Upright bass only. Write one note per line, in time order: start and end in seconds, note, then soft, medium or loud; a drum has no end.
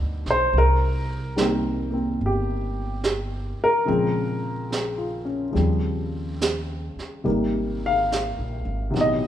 0.00 0.24 D2 soft
0.26 0.52 B1 medium
0.53 2.16 C2 medium
2.21 3.56 G1 medium
3.60 muted upright bass stroke soft
3.88 5.52 A#1 medium
5.55 6.92 D#2 medium
6.96 muted upright bass stroke soft
7.26 8.34 G#1 medium
8.39 8.64 A#1 medium
8.65 8.91 G#1 medium
8.94 9.27 A1 medium